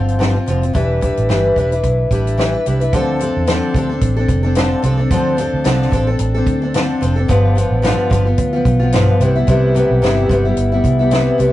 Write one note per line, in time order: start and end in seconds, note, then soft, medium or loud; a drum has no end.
0.00 0.36 G1 medium
0.00 0.19 D3 medium
0.00 0.19 F3 medium
0.00 0.20 C4 medium
0.00 0.21 F4 medium
0.08 closed hi-hat soft
0.19 0.35 G2 medium
0.19 0.35 D3 medium
0.19 0.36 F3 medium
0.19 0.34 C4 medium
0.19 0.33 F4 medium
0.19 snare loud
0.34 0.47 F3 soft
0.34 0.48 C4 soft
0.34 0.47 F4 medium
0.46 0.70 F1 medium
0.46 0.62 D3 medium
0.46 0.63 F3 medium
0.46 0.63 C4 medium
0.46 0.61 F4 medium
0.46 closed hi-hat medium
0.62 0.74 F3 soft
0.62 0.74 C4 soft
0.62 0.75 F4 medium
0.62 closed hi-hat medium
0.73 1.09 E1 medium
0.73 1.02 E3 medium
0.73 1.00 G3 medium
0.73 1.01 D4 medium
0.73 1.02 E4 medium
0.73 1.03 B4 medium
0.73 kick loud
0.73 closed hi-hat medium
1.01 1.28 G3 medium
1.01 1.29 D4 medium
1.01 1.30 E4 medium
1.01 1.31 B4 medium
1.01 kick medium
1.01 closed hi-hat medium
1.17 1.27 A1 medium
1.17 closed hi-hat soft
1.29 1.51 G1 medium
1.29 1.57 E3 medium
1.29 1.55 G3 medium
1.29 1.56 D4 medium
1.29 1.57 E4 medium
1.29 1.58 B4 medium
1.29 snare loud
1.56 1.79 E1 medium
1.56 1.72 G3 medium
1.56 1.72 D4 medium
1.56 1.72 E4 medium
1.56 1.70 B4 medium
1.56 kick medium
1.56 closed hi-hat medium
1.71 2.11 D4 soft
1.71 2.12 E4 soft
1.71 2.11 B4 medium
1.71 closed hi-hat soft
1.83 2.06 B1 medium
1.83 kick medium
1.83 closed hi-hat medium
2.11 2.55 A1 medium
2.11 2.37 G3 medium
2.11 2.38 D4 medium
2.11 2.38 E4 medium
2.11 2.38 B4 medium
2.11 kick medium
2.11 closed hi-hat medium
2.27 closed hi-hat medium
2.38 2.53 E3 medium
2.38 2.53 G3 medium
2.38 2.54 D4 medium
2.38 2.53 E4 medium
2.38 2.51 B4 medium
2.38 snare loud
2.52 2.66 D4 soft
2.52 2.66 E4 soft
2.52 2.65 B4 medium
2.66 2.88 C2 medium
2.66 2.81 G3 medium
2.66 2.82 D4 medium
2.66 2.81 E4 medium
2.66 2.79 B4 medium
2.66 closed hi-hat medium
2.80 2.94 D4 soft
2.80 2.94 E4 soft
2.80 2.93 B4 medium
2.80 closed hi-hat soft
2.93 3.27 D2 loud
2.93 3.20 D3 medium
2.93 3.18 F3 medium
2.93 3.20 C4 medium
2.93 3.21 D4 medium
2.93 3.22 A4 medium
2.93 kick loud
2.93 closed hi-hat medium
3.19 3.46 F3 medium
3.19 3.47 C4 medium
3.19 3.48 D4 medium
3.19 3.48 A4 medium
3.19 closed hi-hat medium
3.37 3.58 E2 loud
3.47 3.75 D3 medium
3.47 3.74 F3 medium
3.47 3.75 C4 medium
3.47 3.76 D4 medium
3.47 3.76 A4 loud
3.47 snare loud
3.47 closed hi-hat medium
3.74 3.97 D2 loud
3.74 3.90 F3 medium
3.74 3.91 C4 medium
3.74 3.91 D4 medium
3.74 3.88 A4 medium
3.74 kick medium
3.74 closed hi-hat medium
3.89 4.19 C4 soft
3.89 4.17 D4 medium
3.89 4.15 A4 medium
4.01 4.24 A1 medium
4.01 kick medium
4.01 closed hi-hat medium
4.17 4.45 C4 soft
4.17 4.43 D4 medium
4.17 4.42 A4 medium
4.29 4.73 F1 medium
4.29 kick medium
4.29 closed hi-hat medium
4.43 4.56 C4 soft
4.43 4.57 D4 medium
4.43 4.56 A4 medium
4.55 4.84 D3 medium
4.55 4.81 F3 medium
4.55 4.83 C4 medium
4.55 4.84 D4 medium
4.55 4.85 A4 loud
4.55 snare loud
4.55 closed hi-hat medium
4.82 5.05 C2 medium
4.82 4.98 F3 medium
4.82 4.99 C4 medium
4.82 4.98 D4 medium
4.82 4.96 A4 medium
4.82 closed hi-hat medium
4.97 5.10 C4 medium
4.97 5.11 D4 medium
4.97 5.11 A4 medium
5.11 5.45 D2 loud
5.11 5.38 D3 medium
5.11 5.36 F3 medium
5.11 5.37 C4 medium
5.11 5.38 D4 loud
5.11 5.39 A4 medium
5.11 kick loud
5.11 closed hi-hat medium
5.37 5.64 F3 medium
5.37 5.65 C4 medium
5.37 5.65 D4 medium
5.37 5.65 A4 medium
5.37 closed hi-hat medium
5.53 5.63 D2 medium
5.64 5.87 C2 medium
5.64 5.92 D3 loud
5.64 5.90 F3 medium
5.64 5.92 C4 medium
5.64 5.92 D4 loud
5.64 5.94 A4 medium
5.64 snare loud
5.64 closed hi-hat medium
5.82 snare soft
5.91 6.15 A1 medium
5.91 6.07 F3 medium
5.91 6.08 C4 medium
5.91 6.08 D4 medium
5.91 6.06 A4 medium
5.91 kick medium
5.91 closed hi-hat medium
6.07 6.36 C4 soft
6.07 6.35 D4 medium
6.07 6.33 A4 medium
6.19 6.42 A1 medium
6.19 closed hi-hat medium
6.34 6.64 C4 medium
6.34 6.62 D4 medium
6.34 6.61 A4 medium
6.46 6.91 D2 medium
6.46 kick medium
6.46 closed hi-hat medium
6.62 6.75 C4 soft
6.62 6.75 D4 medium
6.62 6.75 A4 medium
6.74 7.02 D3 medium
6.74 7.00 F3 medium
6.74 7.01 C4 loud
6.74 7.02 D4 medium
6.74 7.03 A4 loud
6.74 snare loud
6.74 closed hi-hat medium
7.01 7.24 F1 loud
7.01 7.17 F3 medium
7.01 7.17 C4 medium
7.01 7.17 D4 medium
7.01 7.15 A4 medium
7.01 closed hi-hat medium
7.16 7.30 C4 soft
7.16 7.30 D4 medium
7.16 7.29 A4 medium
7.28 7.63 G1 loud
7.28 7.56 G2 medium
7.28 7.54 D3 medium
7.28 7.55 F3 medium
7.28 7.57 B3 medium
7.28 7.57 F4 loud
7.28 kick loud
7.28 closed hi-hat medium
7.55 7.82 D3 medium
7.55 7.82 F3 medium
7.55 7.83 B3 medium
7.55 7.83 F4 medium
7.55 closed hi-hat medium
7.70 7.93 A1 medium
7.82 8.11 G2 medium
7.82 8.09 D3 loud
7.82 8.10 F3 medium
7.82 8.11 B3 loud
7.82 8.12 F4 loud
7.82 snare loud
7.82 closed hi-hat medium
8.10 8.33 G1 loud
8.10 8.26 D3 medium
8.10 8.26 F3 medium
8.10 8.26 B3 medium
8.10 8.24 F4 medium
8.10 kick medium
8.10 closed hi-hat medium
8.25 8.55 F3 soft
8.25 8.53 B3 medium
8.25 8.52 F4 medium
8.38 8.60 D2 loud
8.38 kick medium
8.38 closed hi-hat medium
8.53 8.82 F3 medium
8.53 8.80 B3 medium
8.53 8.78 F4 medium
8.65 9.09 B1 loud
8.65 kick medium
8.65 closed hi-hat medium
8.80 8.92 F3 medium
8.80 8.93 B3 medium
8.80 8.93 F4 medium
8.92 9.20 G2 medium
8.92 9.20 D3 medium
8.92 9.21 F3 loud
8.92 9.21 B3 loud
8.92 9.22 F4 loud
8.92 snare loud
8.92 closed hi-hat medium
9.20 9.42 C2 loud
9.20 9.35 C3 medium
9.20 9.36 G3 medium
9.20 9.37 B3 medium
9.20 9.34 E4 medium
9.20 closed hi-hat medium
9.35 9.47 G3 soft
9.35 9.48 B3 medium
9.35 9.48 E4 medium
9.47 9.82 C2 loud
9.47 9.73 C3 medium
9.47 9.74 G3 medium
9.47 9.76 B3 medium
9.47 9.76 E4 loud
9.47 kick loud
9.47 closed hi-hat medium
9.75 10.01 C3 medium
9.75 10.01 G3 medium
9.75 10.03 B3 medium
9.75 10.03 E4 medium
9.75 closed hi-hat medium
9.90 10.00 B1 medium
10.02 10.25 G1 medium
10.02 10.28 C3 medium
10.02 10.29 G3 medium
10.02 10.30 B3 medium
10.02 10.31 E4 loud
10.02 snare loud
10.02 closed hi-hat medium
10.29 10.52 G1 medium
10.29 10.45 C3 medium
10.29 10.45 G3 medium
10.29 10.46 B3 medium
10.29 10.44 E4 medium
10.29 kick medium
10.29 closed hi-hat medium
10.45 10.74 G3 soft
10.45 10.72 B3 medium
10.45 10.71 E4 medium
10.57 10.79 G1 medium
10.57 closed hi-hat medium
10.72 11.01 G3 soft
10.72 10.99 B3 medium
10.72 10.98 E4 medium
10.84 11.28 C2 medium
10.84 kick medium
10.84 closed hi-hat medium
10.99 11.11 G3 soft
10.99 11.11 B3 medium
10.99 11.11 E4 medium
11.11 11.37 C3 medium
11.11 11.38 G3 medium
11.11 11.39 B3 medium
11.11 11.40 E4 medium
11.11 snare loud
11.11 closed hi-hat medium
11.38 11.53 C2 medium
11.38 11.53 C3 medium
11.38 11.53 G3 medium
11.38 11.53 B3 medium
11.38 11.52 E4 medium
11.38 closed hi-hat medium